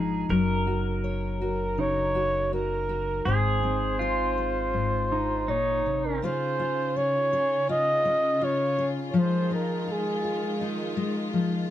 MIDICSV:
0, 0, Header, 1, 7, 480
1, 0, Start_track
1, 0, Key_signature, -5, "major"
1, 0, Tempo, 740741
1, 196, Time_signature, 4, 2, 24, 8
1, 4037, Tempo, 730816
1, 7632, End_track
2, 0, Start_track
2, 0, Title_t, "Flugelhorn"
2, 0, Program_c, 0, 56
2, 929, Note_on_c, 0, 70, 86
2, 1168, Note_on_c, 0, 73, 104
2, 1178, Note_off_c, 0, 70, 0
2, 1640, Note_off_c, 0, 73, 0
2, 1646, Note_on_c, 0, 70, 83
2, 2123, Note_on_c, 0, 72, 87
2, 2133, Note_off_c, 0, 70, 0
2, 3557, Note_off_c, 0, 72, 0
2, 3561, Note_on_c, 0, 73, 86
2, 3923, Note_on_c, 0, 70, 81
2, 3933, Note_off_c, 0, 73, 0
2, 4046, Note_on_c, 0, 72, 99
2, 4056, Note_off_c, 0, 70, 0
2, 4523, Note_on_c, 0, 73, 96
2, 4533, Note_off_c, 0, 72, 0
2, 5001, Note_off_c, 0, 73, 0
2, 5005, Note_on_c, 0, 75, 113
2, 5489, Note_on_c, 0, 73, 102
2, 5499, Note_off_c, 0, 75, 0
2, 5808, Note_off_c, 0, 73, 0
2, 5919, Note_on_c, 0, 73, 72
2, 5975, Note_on_c, 0, 72, 91
2, 5985, Note_off_c, 0, 73, 0
2, 6206, Note_off_c, 0, 72, 0
2, 6215, Note_on_c, 0, 70, 76
2, 6461, Note_on_c, 0, 68, 79
2, 6471, Note_off_c, 0, 70, 0
2, 6929, Note_off_c, 0, 68, 0
2, 7632, End_track
3, 0, Start_track
3, 0, Title_t, "Pedal steel guitar"
3, 0, Program_c, 1, 26
3, 0, Note_on_c, 1, 68, 91
3, 171, Note_off_c, 1, 68, 0
3, 197, Note_on_c, 1, 70, 96
3, 2086, Note_off_c, 1, 70, 0
3, 2109, Note_on_c, 1, 68, 97
3, 2587, Note_on_c, 1, 65, 83
3, 2604, Note_off_c, 1, 68, 0
3, 3552, Note_on_c, 1, 63, 58
3, 3582, Note_off_c, 1, 65, 0
3, 4008, Note_off_c, 1, 63, 0
3, 7632, End_track
4, 0, Start_track
4, 0, Title_t, "Steel-string acoustic guitar"
4, 0, Program_c, 2, 25
4, 0, Note_on_c, 2, 44, 69
4, 0, Note_on_c, 2, 53, 59
4, 0, Note_on_c, 2, 56, 65
4, 0, Note_on_c, 2, 68, 55
4, 197, Note_off_c, 2, 53, 0
4, 198, Note_off_c, 2, 44, 0
4, 198, Note_off_c, 2, 56, 0
4, 200, Note_on_c, 2, 54, 66
4, 220, Note_off_c, 2, 68, 0
4, 434, Note_on_c, 2, 66, 59
4, 674, Note_on_c, 2, 73, 57
4, 915, Note_off_c, 2, 66, 0
4, 917, Note_on_c, 2, 66, 52
4, 1152, Note_on_c, 2, 49, 60
4, 1384, Note_off_c, 2, 66, 0
4, 1392, Note_on_c, 2, 66, 64
4, 1632, Note_off_c, 2, 66, 0
4, 1639, Note_on_c, 2, 66, 60
4, 1866, Note_off_c, 2, 66, 0
4, 1874, Note_on_c, 2, 66, 57
4, 2082, Note_off_c, 2, 49, 0
4, 2082, Note_off_c, 2, 73, 0
4, 2084, Note_off_c, 2, 66, 0
4, 2112, Note_on_c, 2, 44, 73
4, 2114, Note_off_c, 2, 54, 0
4, 2118, Note_on_c, 2, 60, 54
4, 2128, Note_on_c, 2, 68, 63
4, 2346, Note_off_c, 2, 60, 0
4, 2354, Note_on_c, 2, 60, 61
4, 2592, Note_off_c, 2, 68, 0
4, 2600, Note_on_c, 2, 68, 57
4, 2828, Note_off_c, 2, 68, 0
4, 2836, Note_on_c, 2, 68, 55
4, 3060, Note_off_c, 2, 44, 0
4, 3068, Note_on_c, 2, 44, 65
4, 3315, Note_off_c, 2, 60, 0
4, 3550, Note_off_c, 2, 44, 0
4, 3553, Note_on_c, 2, 46, 64
4, 3795, Note_off_c, 2, 46, 0
4, 3797, Note_on_c, 2, 48, 62
4, 4009, Note_off_c, 2, 68, 0
4, 4033, Note_on_c, 2, 49, 78
4, 4035, Note_off_c, 2, 48, 0
4, 4039, Note_on_c, 2, 61, 59
4, 4042, Note_on_c, 2, 65, 67
4, 4050, Note_on_c, 2, 68, 72
4, 4274, Note_off_c, 2, 65, 0
4, 4277, Note_on_c, 2, 65, 57
4, 4516, Note_off_c, 2, 68, 0
4, 4519, Note_on_c, 2, 68, 58
4, 4756, Note_off_c, 2, 68, 0
4, 4759, Note_on_c, 2, 68, 68
4, 4995, Note_off_c, 2, 65, 0
4, 4997, Note_on_c, 2, 65, 67
4, 5226, Note_off_c, 2, 61, 0
4, 5234, Note_on_c, 2, 61, 74
4, 5469, Note_off_c, 2, 65, 0
4, 5471, Note_on_c, 2, 65, 65
4, 5711, Note_off_c, 2, 68, 0
4, 5714, Note_on_c, 2, 68, 64
4, 5926, Note_off_c, 2, 61, 0
4, 5943, Note_off_c, 2, 49, 0
4, 5945, Note_on_c, 2, 53, 88
4, 5952, Note_off_c, 2, 68, 0
4, 5952, Note_on_c, 2, 68, 69
4, 6189, Note_off_c, 2, 65, 0
4, 6191, Note_on_c, 2, 63, 60
4, 6430, Note_on_c, 2, 65, 58
4, 6670, Note_off_c, 2, 65, 0
4, 6673, Note_on_c, 2, 65, 57
4, 6907, Note_off_c, 2, 63, 0
4, 6915, Note_on_c, 2, 63, 67
4, 7149, Note_on_c, 2, 56, 75
4, 7388, Note_off_c, 2, 53, 0
4, 7390, Note_on_c, 2, 53, 62
4, 7629, Note_off_c, 2, 53, 0
4, 7632, Note_off_c, 2, 56, 0
4, 7632, Note_off_c, 2, 63, 0
4, 7632, Note_off_c, 2, 65, 0
4, 7632, Note_off_c, 2, 68, 0
4, 7632, End_track
5, 0, Start_track
5, 0, Title_t, "Harp"
5, 0, Program_c, 3, 46
5, 0, Note_on_c, 3, 63, 50
5, 1153, Note_off_c, 3, 63, 0
5, 1156, Note_on_c, 3, 63, 49
5, 2908, Note_off_c, 3, 63, 0
5, 3316, Note_on_c, 3, 63, 44
5, 5082, Note_off_c, 3, 63, 0
5, 7632, End_track
6, 0, Start_track
6, 0, Title_t, "String section"
6, 0, Program_c, 4, 48
6, 4029, Note_on_c, 4, 65, 85
6, 4032, Note_on_c, 4, 49, 77
6, 5936, Note_off_c, 4, 49, 0
6, 5966, Note_on_c, 4, 56, 79
6, 5968, Note_on_c, 4, 51, 77
6, 7632, Note_off_c, 4, 51, 0
6, 7632, Note_off_c, 4, 56, 0
6, 7632, Note_off_c, 4, 65, 0
6, 7632, End_track
7, 0, Start_track
7, 0, Title_t, "Upright bass"
7, 0, Program_c, 5, 32
7, 0, Note_on_c, 5, 32, 60
7, 171, Note_off_c, 5, 32, 0
7, 191, Note_on_c, 5, 30, 64
7, 2083, Note_off_c, 5, 30, 0
7, 2109, Note_on_c, 5, 32, 64
7, 4008, Note_off_c, 5, 32, 0
7, 7632, End_track
0, 0, End_of_file